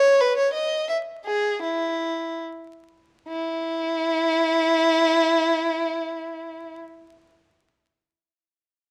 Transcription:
0, 0, Header, 1, 2, 480
1, 0, Start_track
1, 0, Key_signature, 4, "major"
1, 0, Tempo, 673401
1, 630, Time_signature, 3, 2, 24, 8
1, 630, Tempo, 738916
1, 1110, Tempo, 794702
1, 1590, Tempo, 865801
1, 5186, End_track
2, 0, Start_track
2, 0, Title_t, "Violin"
2, 0, Program_c, 0, 40
2, 0, Note_on_c, 0, 73, 90
2, 138, Note_off_c, 0, 73, 0
2, 144, Note_on_c, 0, 71, 83
2, 261, Note_off_c, 0, 71, 0
2, 267, Note_on_c, 0, 73, 70
2, 381, Note_on_c, 0, 75, 69
2, 382, Note_off_c, 0, 73, 0
2, 625, Note_off_c, 0, 75, 0
2, 631, Note_on_c, 0, 76, 67
2, 683, Note_off_c, 0, 76, 0
2, 868, Note_on_c, 0, 68, 63
2, 1106, Note_off_c, 0, 68, 0
2, 1114, Note_on_c, 0, 64, 59
2, 1583, Note_off_c, 0, 64, 0
2, 2070, Note_on_c, 0, 64, 89
2, 4001, Note_off_c, 0, 64, 0
2, 5186, End_track
0, 0, End_of_file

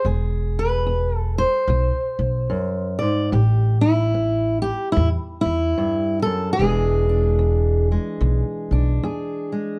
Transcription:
0, 0, Header, 1, 3, 480
1, 0, Start_track
1, 0, Tempo, 815217
1, 31, Time_signature, 4, 2, 24, 8
1, 5765, End_track
2, 0, Start_track
2, 0, Title_t, "Steel-string acoustic guitar"
2, 0, Program_c, 0, 25
2, 32, Note_on_c, 0, 40, 65
2, 34, Note_on_c, 0, 68, 44
2, 347, Note_on_c, 0, 71, 85
2, 477, Note_off_c, 0, 40, 0
2, 509, Note_on_c, 0, 40, 66
2, 688, Note_off_c, 0, 71, 0
2, 688, Note_on_c, 0, 69, 85
2, 812, Note_off_c, 0, 69, 0
2, 814, Note_on_c, 0, 72, 90
2, 957, Note_off_c, 0, 40, 0
2, 999, Note_on_c, 0, 40, 75
2, 1442, Note_off_c, 0, 40, 0
2, 1470, Note_on_c, 0, 42, 64
2, 1756, Note_off_c, 0, 72, 0
2, 1758, Note_on_c, 0, 74, 91
2, 1766, Note_off_c, 0, 42, 0
2, 1777, Note_on_c, 0, 44, 64
2, 1940, Note_off_c, 0, 68, 0
2, 1955, Note_off_c, 0, 74, 0
2, 1955, Note_on_c, 0, 45, 69
2, 1962, Note_on_c, 0, 67, 47
2, 1964, Note_off_c, 0, 44, 0
2, 2243, Note_off_c, 0, 67, 0
2, 2245, Note_on_c, 0, 64, 89
2, 2401, Note_off_c, 0, 45, 0
2, 2440, Note_on_c, 0, 45, 66
2, 2717, Note_off_c, 0, 64, 0
2, 2719, Note_on_c, 0, 67, 88
2, 2883, Note_off_c, 0, 45, 0
2, 2895, Note_off_c, 0, 67, 0
2, 2897, Note_on_c, 0, 64, 95
2, 2924, Note_on_c, 0, 45, 67
2, 2992, Note_off_c, 0, 64, 0
2, 3186, Note_on_c, 0, 64, 88
2, 3365, Note_off_c, 0, 45, 0
2, 3401, Note_on_c, 0, 43, 61
2, 3662, Note_off_c, 0, 64, 0
2, 3665, Note_on_c, 0, 69, 98
2, 3682, Note_off_c, 0, 43, 0
2, 3684, Note_on_c, 0, 42, 58
2, 3842, Note_off_c, 0, 69, 0
2, 3844, Note_on_c, 0, 68, 102
2, 3877, Note_off_c, 0, 42, 0
2, 3890, Note_on_c, 0, 40, 70
2, 3892, Note_on_c, 0, 52, 48
2, 3895, Note_on_c, 0, 56, 45
2, 3898, Note_on_c, 0, 62, 46
2, 4169, Note_off_c, 0, 62, 0
2, 4176, Note_on_c, 0, 62, 46
2, 4327, Note_off_c, 0, 40, 0
2, 4350, Note_on_c, 0, 40, 60
2, 4654, Note_off_c, 0, 56, 0
2, 4661, Note_on_c, 0, 56, 42
2, 4795, Note_off_c, 0, 40, 0
2, 4836, Note_on_c, 0, 40, 63
2, 5130, Note_off_c, 0, 62, 0
2, 5136, Note_on_c, 0, 62, 47
2, 5277, Note_off_c, 0, 40, 0
2, 5316, Note_off_c, 0, 68, 0
2, 5319, Note_on_c, 0, 40, 75
2, 5325, Note_on_c, 0, 68, 46
2, 5600, Note_off_c, 0, 56, 0
2, 5607, Note_on_c, 0, 56, 44
2, 5759, Note_off_c, 0, 40, 0
2, 5765, Note_off_c, 0, 52, 0
2, 5765, Note_off_c, 0, 56, 0
2, 5765, Note_off_c, 0, 62, 0
2, 5765, Note_off_c, 0, 68, 0
2, 5765, End_track
3, 0, Start_track
3, 0, Title_t, "Upright bass"
3, 0, Program_c, 1, 32
3, 28, Note_on_c, 1, 28, 78
3, 842, Note_off_c, 1, 28, 0
3, 987, Note_on_c, 1, 35, 86
3, 1114, Note_off_c, 1, 35, 0
3, 1289, Note_on_c, 1, 35, 82
3, 1449, Note_off_c, 1, 35, 0
3, 1959, Note_on_c, 1, 33, 89
3, 2767, Note_off_c, 1, 33, 0
3, 2924, Note_on_c, 1, 40, 85
3, 3045, Note_off_c, 1, 40, 0
3, 3212, Note_on_c, 1, 40, 76
3, 3371, Note_off_c, 1, 40, 0
3, 3881, Note_on_c, 1, 28, 89
3, 4685, Note_off_c, 1, 28, 0
3, 4832, Note_on_c, 1, 35, 84
3, 4956, Note_off_c, 1, 35, 0
3, 5128, Note_on_c, 1, 35, 78
3, 5286, Note_off_c, 1, 35, 0
3, 5765, End_track
0, 0, End_of_file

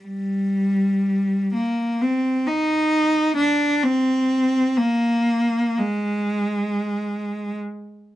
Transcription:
0, 0, Header, 1, 2, 480
1, 0, Start_track
1, 0, Key_signature, -3, "minor"
1, 0, Tempo, 500000
1, 7830, End_track
2, 0, Start_track
2, 0, Title_t, "Cello"
2, 0, Program_c, 0, 42
2, 28, Note_on_c, 0, 55, 39
2, 1438, Note_off_c, 0, 55, 0
2, 1475, Note_on_c, 0, 58, 37
2, 1925, Note_off_c, 0, 58, 0
2, 1932, Note_on_c, 0, 60, 37
2, 2363, Note_on_c, 0, 63, 43
2, 2367, Note_off_c, 0, 60, 0
2, 3224, Note_on_c, 0, 62, 46
2, 3230, Note_off_c, 0, 63, 0
2, 3665, Note_off_c, 0, 62, 0
2, 3676, Note_on_c, 0, 60, 51
2, 4578, Note_on_c, 0, 58, 51
2, 4584, Note_off_c, 0, 60, 0
2, 5536, Note_off_c, 0, 58, 0
2, 5545, Note_on_c, 0, 56, 50
2, 7265, Note_off_c, 0, 56, 0
2, 7830, End_track
0, 0, End_of_file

